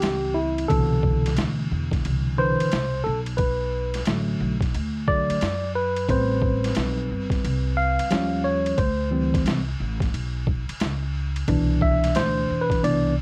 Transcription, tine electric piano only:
0.00 0.65 E3 medium
0.00 0.65 G3 soft
0.00 0.66 C4 medium
0.00 0.38 G4 medium
0.34 0.67 E4 medium
0.68 3.02 B2 medium
0.68 2.36 D3 medium
0.68 2.37 E3 soft
0.68 1.32 A4 loud
2.37 2.68 D3 medium
2.37 2.69 E3 soft
2.37 2.68 B4 medium
2.37 3.02 C5 loud
3.04 3.19 A4 medium
3.37 4.02 B4 medium
4.07 4.55 D3 medium
4.07 4.56 F#3 soft
4.07 4.56 A3 medium
5.08 5.38 D3 soft
5.08 5.39 F#3 soft
5.08 5.38 A3 medium
5.08 5.71 D5 loud
5.75 6.07 B4 medium
6.09 8.08 G3 soft
6.09 8.07 C4 medium
6.09 8.08 B4 medium
6.09 6.73 C5 medium
7.77 8.47 F5 loud
8.11 8.75 F3 medium
8.11 8.75 G3 soft
8.11 8.75 C#4 medium
8.45 8.80 C#5 medium
8.78 9.42 C5 medium
9.11 9.60 E3 medium
9.11 9.60 G3 soft
9.11 9.61 C4 medium
11.48 13.22 B2 soft
11.48 12.82 E3 medium
11.48 12.82 D4 medium
11.82 12.17 E5 medium
12.16 12.62 C5 medium
12.61 12.82 B4 medium
12.83 13.13 E3 medium
12.83 13.14 B3 soft
12.83 13.14 D4 medium
12.83 13.15 D5 medium

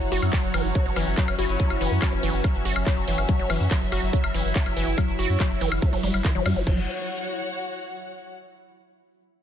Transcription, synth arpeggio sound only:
0.12 0.18 F#4 loud
0.33 0.39 F#3 loud
0.54 0.61 E3 medium
0.75 0.82 F#3 medium
0.86 0.92 F#3 medium
0.96 1.03 E3 loud
1.17 1.21 F#3 loud
1.39 1.45 F#4 loud
1.60 1.66 F#3 loud
1.81 1.87 E3 medium
2.02 2.09 F#3 medium
2.13 2.19 F#3 medium
2.23 2.30 E3 loud
2.44 2.48 F#3 loud
2.65 2.72 F#4 loud
2.87 2.93 F#3 loud
3.08 3.14 E3 medium
3.29 3.35 F#3 medium
3.39 3.46 F#3 medium
3.50 3.56 E3 loud
3.71 3.75 F#3 medium
3.92 3.99 F#4 loud
4.13 4.20 F#3 loud
4.34 4.41 E3 medium
4.55 4.62 F#3 medium
4.66 4.73 F#3 medium
4.77 4.83 E3 loud
4.98 5.02 F#3 loud
5.19 5.25 F#4 loud
5.40 5.47 F#3 loud
5.61 5.68 E3 medium
5.82 5.89 F#3 medium
5.93 5.99 F#3 medium
6.03 6.13 G3 medium
6.25 6.31 E3 medium
6.35 6.39 F#3 loud
6.46 6.52 G3 medium
6.56 6.63 F#3 medium
6.67 6.86 F#3 loud

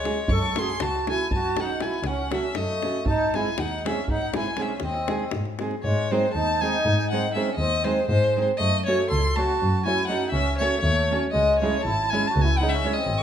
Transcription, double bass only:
0.28 0.59 F#2 loud
0.81 1.11 C#2 medium
1.31 1.47 F#2 medium
2.03 2.34 C#2 medium
2.55 2.86 F#2 medium
3.06 3.37 G#2 medium
3.58 3.89 D#2 medium
4.10 4.25 G#2 medium
4.81 5.12 D#2 medium
5.33 5.64 G#2 medium
5.84 6.15 G#2 loud
6.35 6.66 D#2 medium
6.85 7.29 G#2 loud
7.58 7.88 D#2 loud
8.09 8.25 G#2 loud
8.60 8.90 F#2 loud
9.12 9.42 C#2 loud
9.62 10.05 F#2 loud
10.33 10.63 C#2 loud
10.83 11.00 D#2 loud
11.35 11.65 C#2 loud
11.85 12.16 G#1 loud
12.36 12.79 C#2 loud
13.07 13.23 G#1 loud

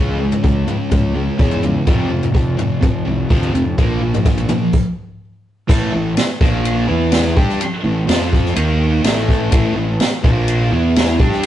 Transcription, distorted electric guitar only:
0.00 0.17 C#3 medium
0.00 0.18 G#3 loud
0.00 0.18 C#4 medium
0.19 0.41 C#3 medium
0.19 0.41 G#3 medium
0.43 0.65 C#3 medium
0.43 0.65 G#3 medium
0.67 0.89 C#3 medium
0.67 0.89 G#3 medium
0.91 1.13 C#3 medium
0.91 1.13 G#3 medium
1.15 1.36 C#3 medium
1.15 1.37 G#3 medium
1.38 1.61 C#3 medium
1.38 1.61 G#3 loud
1.38 1.62 C#4 loud
1.63 1.84 C#3 medium
1.63 1.85 G#3 medium
1.86 2.09 F2 loud
1.86 2.09 C3 loud
1.86 2.09 F3 loud
2.10 2.32 F2 medium
2.10 2.32 C3 medium
2.34 2.56 F2 medium
2.34 2.56 C3 medium
2.57 2.79 F2 medium
2.57 2.79 C3 medium
2.81 3.03 F2 medium
2.81 3.04 C3 medium
3.05 3.27 F2 medium
3.05 3.27 C3 medium
3.29 3.52 F2 loud
3.29 3.52 C3 medium
3.29 3.53 F3 loud
3.53 3.75 F2 medium
3.53 3.75 C3 medium
3.77 4.00 A#2 medium
3.77 4.00 F3 loud
3.77 4.00 A#3 loud
4.01 4.23 A#2 medium
4.01 4.23 F3 medium
4.25 4.47 A#2 medium
4.25 4.47 F3 medium
4.49 4.71 A#2 medium
4.49 4.71 F3 medium
5.68 5.92 A2 loud
5.68 5.92 E3 loud
5.68 5.92 A3 loud
5.93 6.12 A2 medium
5.93 6.12 E3 medium
6.40 6.87 A#2 medium
6.40 6.88 F3 loud
6.40 6.88 A#3 loud
6.88 7.35 E3 loud
6.88 7.35 B3 loud
6.88 7.36 E4 loud
7.36 7.59 G3 medium
7.36 7.60 D4 loud
7.36 7.60 G4 loud
7.84 8.03 A2 medium
7.84 8.03 E3 medium
8.07 8.55 F3 loud
8.07 8.55 C4 loud
8.07 8.56 F4 loud
8.55 9.03 D#3 medium
8.55 9.03 A#3 loud
8.55 9.03 D#4 loud
9.04 9.50 A2 loud
9.04 9.51 E3 loud
9.04 9.51 A3 loud
9.51 9.74 A2 loud
9.51 9.75 E3 loud
9.51 9.75 A3 loud
9.76 9.95 A2 medium
9.76 9.95 E3 medium
10.23 10.70 A#2 loud
10.23 10.70 F3 loud
10.23 10.71 A#3 loud
10.71 11.18 E3 medium
10.71 11.18 B3 loud
10.71 11.19 E4 loud
11.19 11.42 G3 loud
11.19 11.43 D4 loud
11.19 11.43 G4 loud

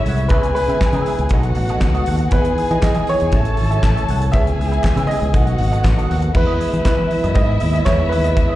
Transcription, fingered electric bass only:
0.06 0.31 C2 medium
0.31 0.50 C#2 loud
0.68 0.78 C#3 medium
0.93 1.03 C#3 medium
1.19 1.28 C#2 loud
1.31 1.51 B1 loud
1.57 1.77 A1 medium
1.81 2.01 C#2 medium
2.08 2.27 D#2 medium
2.32 2.52 E2 loud
2.71 2.80 E3 medium
2.96 3.06 E3 medium
3.22 3.31 E2 medium
3.33 3.59 A1 loud
3.59 3.78 G#1 medium
3.83 4.03 A1 medium
4.09 4.28 C2 medium
4.34 4.54 C#2 loud
4.59 4.79 C#2 medium
4.96 5.06 C#3 loud
5.22 5.32 C#2 loud
5.34 5.54 B1 loud
5.59 5.79 G#1 loud
5.84 6.04 A1 medium
6.11 6.30 D#2 medium
6.35 6.55 E2 loud
6.73 6.83 E3 loud
6.99 7.08 E3 medium
7.24 7.34 F#2 loud
7.36 7.56 G#2 medium
7.62 7.82 D#2 medium
7.86 8.14 E2 medium
8.14 8.37 D#2 loud
8.37 8.55 E2 loud

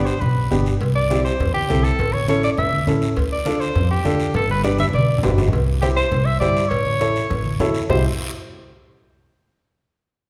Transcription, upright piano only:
0.00 0.12 B3 medium
0.00 0.13 D4 medium
0.00 0.13 G4 medium
0.51 0.72 B3 medium
0.51 0.72 D4 medium
0.51 0.72 G4 medium
1.10 1.31 C4 medium
1.10 1.31 E4 medium
1.10 1.31 G4 medium
1.69 1.90 C4 medium
1.69 1.90 E4 medium
1.69 1.90 A4 medium
2.28 2.49 C#4 medium
2.28 2.49 E4 medium
2.28 2.49 A4 medium
2.87 3.08 C#4 medium
2.87 3.08 E4 medium
2.87 3.08 A4 medium
3.45 3.67 D4 medium
3.45 3.67 F4 medium
3.45 3.67 A4 medium
4.04 4.26 D4 medium
4.04 4.26 F4 medium
4.04 4.26 A4 medium
4.64 4.85 D4 medium
4.64 4.85 G4 medium
4.64 4.85 B4 medium
5.23 5.44 D4 medium
5.23 5.44 G4 medium
5.23 5.44 B4 medium
5.82 6.03 E4 medium
5.82 6.03 G4 medium
5.82 6.03 C5 medium
6.41 6.62 E4 medium
6.41 6.62 G4 medium
6.41 6.62 C5 medium
7.01 7.21 E4 medium
7.01 7.22 A4 medium
7.01 7.22 C#5 medium
7.60 7.80 E4 medium
7.60 7.81 A4 medium
7.60 7.81 C#5 medium
7.90 8.03 E4 medium
7.90 8.03 G4 medium
7.90 8.03 C5 medium

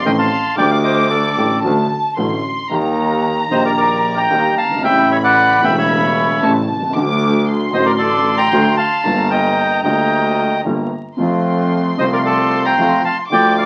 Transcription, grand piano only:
0.05 0.28 A1 medium
0.05 0.28 A2 medium
0.05 0.27 D#3 medium
0.05 0.28 A3 medium
0.05 0.28 C4 medium
0.05 0.28 A4 medium
0.55 1.33 D2 medium
0.55 1.33 D3 medium
0.55 1.33 G3 medium
0.55 1.33 A3 medium
0.55 1.34 G4 medium
1.37 1.60 A1 medium
1.37 1.60 A2 medium
1.37 1.60 D3 medium
1.37 1.60 G3 soft
1.37 1.60 A3 medium
1.37 1.60 G4 medium
1.63 1.86 D2 medium
1.63 1.86 D3 medium
1.63 1.86 F#3 medium
1.63 1.87 A3 medium
1.63 1.87 F#4 medium
2.17 2.40 A1 medium
2.17 2.40 A2 medium
2.17 2.40 D3 medium
2.17 2.40 F#3 medium
2.17 2.40 A3 medium
2.17 2.40 F#4 medium
2.69 3.47 D#2 medium
2.69 2.71 D#3 medium
2.69 3.47 D#3 medium
2.69 3.47 G3 medium
2.69 3.47 A#3 medium
2.74 3.48 G4 medium
3.49 4.27 A#1 medium
3.49 4.27 A#2 medium
3.49 4.26 D#3 medium
3.49 4.27 G3 soft
3.49 4.28 A#3 medium
3.49 4.28 G4 medium
4.30 4.53 D#2 medium
4.30 4.53 D#3 medium
4.30 4.53 G3 medium
4.30 4.53 A#3 medium
4.30 4.53 G4 medium
4.64 4.71 F#1 soft
4.71 4.78 G1 soft
4.76 4.84 G#1 medium
4.81 5.59 A1 medium
4.81 5.59 A2 medium
4.81 5.58 C#3 medium
4.81 5.59 G3 medium
4.81 5.59 A3 medium
4.86 5.60 E4 medium
5.61 6.38 E1 medium
5.61 6.38 E2 medium
5.61 6.37 C#3 medium
5.61 6.38 G3 medium
5.61 6.38 A3 medium
5.61 6.39 E4 medium
6.42 6.64 A1 medium
6.42 6.64 A2 medium
6.42 6.64 C#3 medium
6.42 6.64 G3 medium
6.42 6.64 A3 medium
6.42 6.65 E4 medium
6.75 6.82 B1 soft
6.82 6.88 C2 medium
6.89 6.95 C#2 medium
6.95 7.70 D2 medium
6.95 7.69 D3 medium
6.95 7.69 F#3 medium
6.95 7.70 A3 medium
6.95 7.71 F#4 medium
7.71 8.48 A1 medium
7.71 8.48 A2 medium
7.71 8.47 D3 medium
7.71 8.48 F#3 medium
7.71 8.48 A3 medium
7.75 8.49 F#4 medium
8.52 8.75 D2 medium
8.52 8.74 D3 medium
8.52 8.74 F#3 medium
8.52 8.75 A3 medium
8.52 8.74 F#4 medium
9.03 9.80 G1 medium
9.03 9.81 G2 medium
9.03 9.80 D3 medium
9.03 9.80 G3 medium
9.03 9.81 A#3 medium
9.03 9.81 F4 medium
9.83 10.61 D2 medium
9.83 9.84 D3 medium
9.83 10.61 D3 medium
9.83 10.61 G3 medium
9.83 10.61 A#3 medium
9.83 10.62 F4 medium
10.65 10.88 G1 medium
10.65 10.88 G2 medium
10.65 10.87 D3 medium
10.65 10.87 G3 medium
10.65 10.87 A#3 medium
10.65 10.88 F4 medium
11.17 11.95 F2 medium
11.17 11.94 C3 medium
11.17 11.95 F3 medium
11.17 11.95 A3 medium
11.17 11.96 F4 medium
11.97 12.75 C2 medium
11.97 11.99 C3 medium
11.97 12.75 C3 medium
11.97 12.75 F3 medium
11.97 12.75 A3 medium
11.97 12.76 F4 medium
12.78 13.01 F2 medium
12.78 13.00 C3 medium
12.78 13.01 F3 medium
12.78 13.01 A3 medium
12.78 13.01 F4 medium
13.30 13.66 D2 medium
13.30 13.31 D3 medium
13.30 13.66 D3 medium
13.30 13.66 F3 medium
13.30 13.66 A3 medium
13.30 13.66 F4 medium

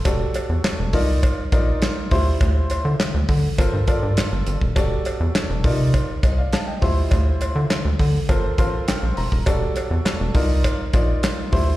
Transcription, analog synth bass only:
0.05 0.26 E1 loud
0.49 0.60 E2 medium
0.79 0.95 E1 medium
0.93 1.24 C2 loud
1.52 1.73 A#1 medium
2.11 2.32 D2 loud
2.41 2.61 D2 loud
2.85 2.95 D3 medium
3.14 3.25 D2 loud
3.29 3.49 D3 medium
3.58 3.69 G1 loud
3.73 3.84 G2 medium
4.03 4.13 G2 medium
4.32 4.42 G1 medium
4.47 4.57 G1 loud
4.61 4.72 D#1 medium
4.76 4.97 E1 loud
5.20 5.31 E2 loud
5.50 5.66 E1 loud
5.64 5.95 C3 medium
6.23 6.44 C2 medium
6.82 7.03 D2 loud
7.12 7.32 D2 loud
7.55 7.66 D3 loud
7.85 7.95 D2 loud
8.00 8.20 D3 medium
8.29 8.50 G1 loud
8.58 8.79 A1 medium
9.03 9.13 A#1 medium
9.17 9.28 E1 loud
9.32 9.42 D#1 loud
9.47 9.67 E1 loud
9.91 10.01 E2 medium
10.20 10.30 E1 loud
10.35 10.66 C2 loud
10.94 11.14 A#1 loud
11.53 11.73 D2 loud

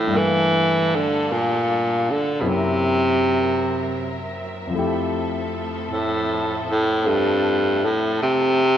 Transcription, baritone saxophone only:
0.00 0.19 A2 medium
0.17 0.97 E3 medium
0.95 1.33 D3 medium
1.32 2.12 A#2 medium
2.11 2.42 D3 medium
2.41 2.50 B2 soft
2.48 4.39 C3 medium
5.91 6.64 A2 medium
6.70 7.09 A2 medium
7.07 7.86 G2 medium
7.85 8.21 A2 medium
8.22 8.78 C3 medium

